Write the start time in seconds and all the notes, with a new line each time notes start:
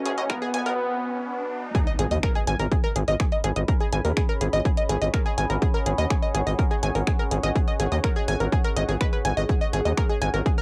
Already playing: C#4 F#4 B4 E5 G#5, riser
0.05 G#1 G#4, closed hi-hat
0.18 D#2 D#5, closed hi-hat
0.30 B3 A#4, finger snap, kick, closed hi-hat
0.42 G#4, closed hi-hat
0.54 G#1 G#5, closed hi-hat
0.66 G#1 A#4, closed hi-hat
1.75 G#4, kick, closed hi-hat, impact
1.87 D#5, closed hi-hat
1.94 C#5
1.99 G#1 G#4, closed hi-hat
2.11 D#2 D#5 F#5, closed hi-hat
2.21 A#4 B5, finger snap, kick, closed hi-hat
2.35 G#4, closed hi-hat
2.47 G#1 G#5, closed hi-hat
2.59 G#1 A#4, closed hi-hat
2.72 G#4, kick, closed hi-hat
2.84 A#4, closed hi-hat
2.96 G#1 G#4, closed hi-hat
3.08 G#1 D#5, closed hi-hat
3.20 G#4, finger snap, kick, closed hi-hat
3.32 D#5, closed hi-hat
3.44 G#1 G#4, closed hi-hat
3.56 G#1 D#5, closed hi-hat
3.68 A#4, kick, closed hi-hat
3.80 G#4, closed hi-hat
3.93 G#1 G#5, closed hi-hat
4.05 D#2 A#4, closed hi-hat
4.17 G#4, finger snap, kick, closed hi-hat
4.29 A#4, closed hi-hat
4.41 G#1 G#4, closed hi-hat
4.53 G#1 D#5, closed hi-hat
4.65 G#4, kick, closed hi-hat
4.77 D#5, closed hi-hat
4.89 G#1 G#4, closed hi-hat
5.01 G#1 D#5, closed hi-hat
5.14 A#4, finger snap, kick, closed hi-hat
5.26 G#4, closed hi-hat
5.38 G#1 G#5, closed hi-hat
5.50 G#1 A#4, closed hi-hat
5.62 G#4, kick, closed hi-hat
5.74 A#4, closed hi-hat
5.86 G#1 G#4, closed hi-hat
5.98 D#2 D#5, closed hi-hat
6.10 G#4, finger snap, kick, closed hi-hat
6.22 D#5, closed hi-hat
6.35 G#1 G#4, closed hi-hat
6.47 G#1 D#5, closed hi-hat
6.59 A#4, kick, closed hi-hat
6.71 G#4, closed hi-hat
6.83 G#1 G#5, closed hi-hat
6.95 G#1 A#4, closed hi-hat
7.07 G#4, finger snap, kick, closed hi-hat
7.19 A#4, closed hi-hat
7.31 G#1 G#4, closed hi-hat
7.43 G#1 D#5, closed hi-hat
7.56 G#4, kick, closed hi-hat
7.68 D#5, closed hi-hat
7.80 G#1 G#4, closed hi-hat
7.92 D#2 D#5, closed hi-hat
8.04 A#4, finger snap, kick, closed hi-hat
8.16 G#4, closed hi-hat
8.28 G#1 G#5, closed hi-hat
8.40 G#1 A#4, closed hi-hat
8.52 G#4, kick, closed hi-hat
8.64 A#4, closed hi-hat
8.76 G#1 D#5, closed hi-hat
8.89 G#1 G#4, closed hi-hat
9.01 B4, finger snap, kick, closed hi-hat
9.13 B4, closed hi-hat
9.25 G#1 G#5, closed hi-hat
9.37 G#1 D#5, closed hi-hat
9.49 G#4, kick, closed hi-hat
9.61 D#5, closed hi-hat
9.73 G#1 G#4, closed hi-hat
9.85 D#2 D#5, closed hi-hat
9.97 A#4, finger snap, kick, closed hi-hat
10.10 G#4, closed hi-hat
10.22 G#1 G#5, closed hi-hat
10.34 G#1 A#4, closed hi-hat
10.46 G#4, kick, closed hi-hat
10.58 A#4, closed hi-hat